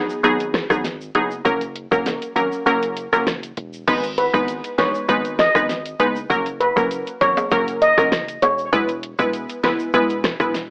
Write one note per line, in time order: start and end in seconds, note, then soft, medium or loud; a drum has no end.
0.00 0.22 F#3 medium
0.00 0.22 B3 medium
0.00 0.22 D#4 medium
0.00 0.22 G#4 medium
0.10 shaker medium
0.23 0.66 G#1 loud
0.23 0.66 F#3 loud
0.23 0.66 B3 medium
0.23 0.66 D#4 medium
0.23 0.67 G#4 loud
0.23 closed hi-hat medium
0.23 shaker medium
0.40 closed hi-hat medium
0.40 shaker medium
0.54 cross-stick medium
0.54 snare loud
0.54 closed hi-hat medium
0.54 shaker medium
0.70 1.10 G#1 medium
0.70 0.85 F#3 medium
0.70 0.85 B3 medium
0.70 0.85 D#4 medium
0.70 0.85 G#4 medium
0.70 kick loud
0.70 cross-stick medium
0.70 shaker medium
0.84 snare medium
0.84 closed hi-hat medium
0.84 shaker medium
1.01 shaker medium
1.15 1.42 F#1 medium
1.15 1.31 F#3 medium
1.15 1.31 B3 medium
1.15 1.32 D#4 medium
1.15 1.32 G#4 medium
1.15 closed hi-hat medium
1.31 shaker medium
1.45 1.87 F#1 loud
1.45 1.61 F#3 medium
1.45 1.62 A#3 medium
1.45 1.62 C#4 medium
1.45 1.62 A#4 loud
1.45 kick loud
1.45 closed hi-hat medium
1.45 shaker medium
1.61 closed hi-hat medium
1.61 shaker soft
1.75 closed hi-hat medium
1.91 2.19 F#1 loud
1.91 2.33 F#3 medium
1.91 2.33 A#3 medium
1.91 2.33 C#4 medium
1.91 2.33 A#4 medium
1.91 kick loud
1.91 shaker medium
2.06 snare medium
2.06 closed hi-hat medium
2.06 high timbale medium
2.06 shaker medium
2.22 closed hi-hat medium
2.22 shaker medium
2.36 2.50 G#1 loud
2.36 2.64 F#3 medium
2.36 2.64 A#3 medium
2.36 2.64 C#4 medium
2.36 2.64 A#4 medium
2.36 closed hi-hat medium
2.36 shaker medium
2.52 shaker medium
2.66 3.08 F#1 loud
2.66 3.09 F#3 loud
2.66 3.09 A#3 medium
2.66 3.09 C#4 medium
2.66 3.09 A#4 loud
2.66 closed hi-hat medium
2.66 shaker medium
2.83 closed hi-hat medium
2.83 shaker soft
2.97 closed hi-hat medium
2.97 shaker medium
3.12 3.53 F#1 medium
3.12 3.27 F#3 medium
3.12 3.28 A#3 medium
3.12 3.28 C#4 medium
3.12 3.28 A#4 medium
3.12 cross-stick loud
3.12 shaker medium
3.27 cross-stick medium
3.27 snare loud
3.27 closed hi-hat medium
3.27 shaker medium
3.43 closed hi-hat medium
3.43 shaker medium
3.57 3.85 E1 medium
3.57 closed hi-hat medium
3.73 shaker medium
3.87 4.29 G#1 loud
3.87 4.04 G#3 loud
3.87 4.04 B3 medium
3.87 4.04 D#4 medium
3.87 4.04 B4 loud
3.87 kick loud
3.87 closed hi-hat medium
3.87 crash loud
3.87 shaker medium
4.04 closed hi-hat medium
4.04 shaker medium
4.18 4.31 B4 medium
4.18 closed hi-hat medium
4.34 4.61 G#1 loud
4.34 4.75 G#3 medium
4.34 4.75 B3 medium
4.34 4.75 D#4 medium
4.34 4.75 B4 medium
4.34 kick medium
4.34 shaker medium
4.48 closed hi-hat medium
4.48 shaker medium
4.64 closed hi-hat medium
4.64 shaker medium
4.78 4.93 A#1 medium
4.78 5.06 G#3 medium
4.78 5.07 B3 medium
4.78 5.07 D#4 medium
4.78 5.07 B4 medium
4.78 4.92 C#5 medium
4.78 cross-stick medium
4.78 snare loud
4.78 closed hi-hat medium
4.78 shaker medium
4.95 shaker medium
5.09 5.50 G#1 loud
5.09 5.51 G#3 loud
5.09 5.51 B3 medium
5.09 5.51 D#4 medium
5.09 5.52 B4 loud
5.09 kick medium
5.09 closed hi-hat medium
5.09 shaker medium
5.25 closed hi-hat medium
5.25 shaker medium
5.39 5.52 D#5 medium
5.39 cross-stick medium
5.39 snare loud
5.39 closed hi-hat medium
5.39 shaker medium
5.55 5.95 G#1 medium
5.55 5.70 G#3 medium
5.55 5.70 B3 medium
5.55 5.70 D#4 medium
5.55 5.70 B4 medium
5.55 kick loud
5.55 cross-stick medium
5.55 shaker medium
5.69 snare medium
5.69 closed hi-hat medium
5.69 shaker medium
5.86 closed hi-hat medium
5.86 shaker medium
6.00 6.27 F#1 medium
6.00 6.16 G#3 medium
6.00 6.16 B3 medium
6.00 6.16 D#4 medium
6.00 6.16 B4 medium
6.00 closed hi-hat medium
6.00 shaker medium
6.16 shaker medium
6.30 6.72 F#1 loud
6.30 6.46 F#3 loud
6.30 6.47 A#3 medium
6.30 6.47 C#4 medium
6.30 6.47 A#4 loud
6.30 kick loud
6.30 closed hi-hat medium
6.30 shaker medium
6.46 closed hi-hat medium
6.46 shaker medium
6.61 6.73 B4 medium
6.61 closed hi-hat medium
6.76 7.04 F#1 loud
6.76 7.17 F#3 medium
6.76 7.18 A#3 medium
6.76 7.18 C#4 medium
6.76 7.18 A#4 medium
6.76 kick medium
6.76 shaker medium
6.91 closed hi-hat medium
6.91 shaker medium
7.07 closed hi-hat medium
7.07 shaker medium
7.21 7.36 G#1 medium
7.21 7.49 F#3 medium
7.21 7.49 A#3 medium
7.21 7.49 C#4 medium
7.21 7.50 A#4 medium
7.21 7.34 C#5 medium
7.21 kick loud
7.21 closed hi-hat medium
7.21 shaker medium
7.37 high timbale medium
7.37 shaker medium
7.51 7.93 F#1 loud
7.51 7.94 F#3 loud
7.51 7.94 A#3 medium
7.51 7.94 C#4 medium
7.51 7.94 A#4 loud
7.51 kick medium
7.51 closed hi-hat medium
7.51 shaker medium
7.68 closed hi-hat medium
7.68 shaker medium
7.82 7.95 D#5 medium
7.82 closed hi-hat medium
7.82 shaker medium
7.98 8.38 F#1 loud
7.98 8.12 F#3 medium
7.98 8.13 A#3 medium
7.98 8.13 C#4 medium
7.98 8.13 A#4 medium
7.98 kick medium
7.98 cross-stick loud
7.98 shaker medium
8.12 cross-stick medium
8.12 snare loud
8.12 closed hi-hat medium
8.12 shaker medium
8.28 closed hi-hat medium
8.28 shaker medium
8.42 8.69 E1 loud
8.42 8.55 C#5 medium
8.42 closed hi-hat medium
8.42 high timbale medium
8.42 shaker medium
8.58 shaker medium
8.72 9.14 E1 loud
8.72 8.89 G#3 loud
8.72 8.89 B3 medium
8.72 8.89 E4 medium
8.72 8.89 B4 loud
8.72 kick loud
8.72 closed hi-hat medium
8.72 shaker medium
8.89 closed hi-hat medium
8.89 shaker medium
9.03 closed hi-hat medium
9.19 9.46 E1 loud
9.19 9.60 G#3 medium
9.19 9.60 B3 medium
9.19 9.60 E4 medium
9.19 9.60 B4 medium
9.19 kick medium
9.19 shaker medium
9.33 closed hi-hat medium
9.33 shaker medium
9.49 closed hi-hat medium
9.49 shaker medium
9.63 9.78 F#1 medium
9.63 9.91 G#3 medium
9.63 9.92 B3 medium
9.63 9.92 E4 medium
9.63 9.92 B4 medium
9.63 cross-stick medium
9.63 snare loud
9.63 closed hi-hat medium
9.63 shaker medium
9.79 shaker medium
9.94 10.35 E1 loud
9.94 10.36 G#3 loud
9.94 10.36 B3 medium
9.94 10.36 E4 medium
9.94 10.37 B4 loud
9.94 kick medium
9.94 closed hi-hat medium
9.94 shaker medium
10.10 closed hi-hat medium
10.10 shaker medium
10.24 cross-stick medium
10.24 snare loud
10.24 closed hi-hat medium
10.24 shaker medium
10.40 10.70 E1 medium
10.40 10.55 G#3 medium
10.40 10.55 B3 medium
10.40 10.55 E4 medium
10.40 10.55 B4 medium
10.40 kick loud
10.40 cross-stick medium
10.40 shaker medium
10.54 snare medium
10.54 closed hi-hat medium
10.54 shaker medium